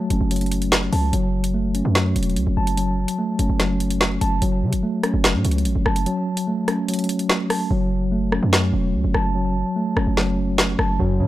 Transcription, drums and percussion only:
0.10 closed hi-hat
0.31 closed hi-hat
0.36 closed hi-hat
0.41 closed hi-hat
0.46 closed hi-hat
0.52 closed hi-hat
0.62 closed hi-hat
0.72 snare
0.93 open hi-hat
1.13 closed hi-hat
1.44 closed hi-hat
1.75 closed hi-hat
1.95 snare
2.16 closed hi-hat
2.23 closed hi-hat
2.30 closed hi-hat
2.36 closed hi-hat
2.67 closed hi-hat
2.77 closed hi-hat
3.08 closed hi-hat
3.39 closed hi-hat
3.60 snare, closed hi-hat
3.80 closed hi-hat
3.90 closed hi-hat
4.01 snare
4.21 closed hi-hat
4.42 closed hi-hat
4.73 closed hi-hat
5.03 cross-stick, closed hi-hat
5.24 snare
5.45 closed hi-hat
5.51 closed hi-hat
5.58 closed hi-hat
5.65 closed hi-hat
5.86 cross-stick
5.96 closed hi-hat
6.06 closed hi-hat
6.37 closed hi-hat
6.68 cross-stick, closed hi-hat
6.88 closed hi-hat
6.94 closed hi-hat
6.99 closed hi-hat
7.04 closed hi-hat
7.09 closed hi-hat
7.19 closed hi-hat
7.29 snare
7.50 cross-stick, open hi-hat
8.32 cross-stick
8.53 snare
9.14 cross-stick
9.97 cross-stick
10.17 snare
10.58 snare
10.79 cross-stick

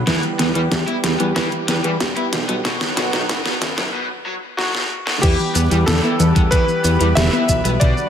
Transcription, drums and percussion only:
0.07 kick, snare, closed hi-hat
0.23 closed hi-hat
0.39 snare, closed hi-hat
0.55 closed hi-hat
0.72 kick, snare, closed hi-hat
0.88 closed hi-hat
1.04 snare, closed hi-hat
1.20 closed hi-hat
1.36 kick, snare, closed hi-hat
1.52 closed hi-hat
1.68 snare, closed hi-hat
1.84 closed hi-hat
2.00 kick, snare, closed hi-hat
2.17 closed hi-hat
2.33 snare, closed hi-hat
2.49 closed hi-hat
2.65 kick, snare, closed hi-hat
2.81 snare, closed hi-hat
2.97 snare, closed hi-hat
3.13 snare, closed hi-hat
3.29 kick, snare, closed hi-hat
3.46 snare, closed hi-hat
3.62 snare, closed hi-hat
3.78 snare, closed hi-hat
4.59 snare
4.75 snare
5.07 snare
5.23 kick, closed hi-hat, crash, shaker
5.39 shaker
5.55 closed hi-hat, shaker
5.71 closed hi-hat, shaker
5.88 snare, closed hi-hat, shaker
6.04 shaker
6.20 closed hi-hat, shaker
6.36 kick, closed hi-hat, shaker
6.52 kick, closed hi-hat, shaker
6.68 shaker
6.85 closed hi-hat, shaker
7.01 closed hi-hat, shaker
7.17 snare, closed hi-hat, shaker
7.33 shaker
7.49 kick, closed hi-hat, shaker
7.65 closed hi-hat, shaker
7.81 kick, closed hi-hat, shaker
7.97 shaker

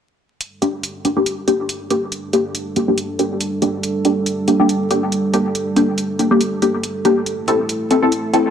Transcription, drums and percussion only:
0.41 closed hi-hat
0.62 closed hi-hat
0.83 closed hi-hat
1.05 closed hi-hat
1.26 closed hi-hat
1.48 closed hi-hat
1.69 closed hi-hat
1.90 closed hi-hat
2.12 closed hi-hat
2.33 closed hi-hat
2.55 closed hi-hat
2.76 closed hi-hat
2.98 closed hi-hat
3.19 closed hi-hat
3.40 closed hi-hat
3.62 closed hi-hat
3.83 closed hi-hat
4.05 closed hi-hat
4.26 closed hi-hat
4.48 closed hi-hat
4.69 closed hi-hat
4.91 closed hi-hat
5.12 closed hi-hat
5.34 closed hi-hat
5.55 closed hi-hat
5.76 closed hi-hat
5.98 closed hi-hat
6.19 closed hi-hat
6.41 closed hi-hat
6.62 closed hi-hat
6.83 closed hi-hat
7.05 closed hi-hat
7.26 closed hi-hat
7.48 closed hi-hat
7.69 closed hi-hat
7.91 closed hi-hat
8.12 closed hi-hat
8.34 closed hi-hat

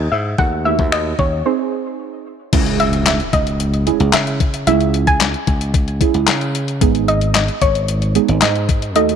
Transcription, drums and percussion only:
0.38 kick
0.79 kick
0.92 finger snap
1.19 kick
2.53 kick, closed hi-hat, crash
2.66 closed hi-hat
2.80 closed hi-hat
2.93 closed hi-hat
3.06 snare, clap, closed hi-hat
3.20 closed hi-hat
3.33 kick, closed hi-hat
3.47 closed hi-hat
3.60 closed hi-hat
3.74 closed hi-hat
3.87 closed hi-hat
4.00 closed hi-hat
4.13 snare, clap, closed hi-hat
4.27 closed hi-hat
4.40 kick, closed hi-hat
4.54 closed hi-hat
4.67 closed hi-hat
4.81 closed hi-hat
4.94 closed hi-hat
5.07 kick, closed hi-hat
5.20 snare, clap, closed hi-hat
5.34 closed hi-hat
5.47 kick, closed hi-hat
5.61 closed hi-hat
5.74 kick, closed hi-hat
5.88 closed hi-hat
6.01 kick, closed hi-hat
6.14 closed hi-hat
6.28 snare, clap, closed hi-hat
6.41 closed hi-hat
6.55 closed hi-hat
6.68 closed hi-hat
6.81 kick, closed hi-hat
6.95 closed hi-hat
7.08 closed hi-hat
7.21 closed hi-hat
7.35 snare, clap, closed hi-hat
7.48 closed hi-hat
7.61 kick, closed hi-hat
7.75 closed hi-hat
7.88 closed hi-hat
8.02 closed hi-hat
8.15 closed hi-hat
8.28 closed hi-hat
8.42 snare, clap, closed hi-hat
8.56 closed hi-hat
8.69 kick, closed hi-hat
8.82 closed hi-hat
8.96 closed hi-hat
9.09 closed hi-hat

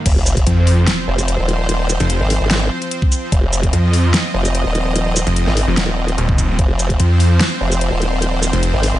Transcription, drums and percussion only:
0.06 kick, closed hi-hat, crash
0.26 closed hi-hat, shaker
0.37 kick, closed hi-hat
0.47 closed hi-hat
0.67 open hi-hat
0.87 snare, closed hi-hat
1.19 closed hi-hat, shaker
1.28 closed hi-hat
1.49 closed hi-hat
1.69 closed hi-hat
1.89 closed hi-hat, shaker
2.00 closed hi-hat
2.10 closed hi-hat
2.30 open hi-hat
2.51 snare, closed hi-hat
2.82 closed hi-hat
2.91 closed hi-hat
3.02 kick
3.12 closed hi-hat, shaker
3.32 kick, closed hi-hat
3.53 closed hi-hat, shaker
3.63 kick, closed hi-hat
3.73 closed hi-hat
3.93 open hi-hat
4.14 snare, closed hi-hat
4.45 closed hi-hat, shaker
4.55 closed hi-hat
4.75 closed hi-hat
4.96 closed hi-hat
5.16 closed hi-hat, shaker
5.27 closed hi-hat
5.36 closed hi-hat
5.47 snare
5.57 open hi-hat
5.77 snare, closed hi-hat
6.08 closed hi-hat
6.18 closed hi-hat
6.29 kick
6.38 kick, closed hi-hat, shaker
6.59 kick, closed hi-hat
6.79 closed hi-hat, shaker
6.90 kick, closed hi-hat
7.00 closed hi-hat
7.20 open hi-hat
7.40 snare, closed hi-hat
7.72 closed hi-hat, shaker
7.81 closed hi-hat
8.02 closed hi-hat
8.22 closed hi-hat
8.43 closed hi-hat, shaker
8.53 closed hi-hat
8.63 closed hi-hat
8.83 open hi-hat

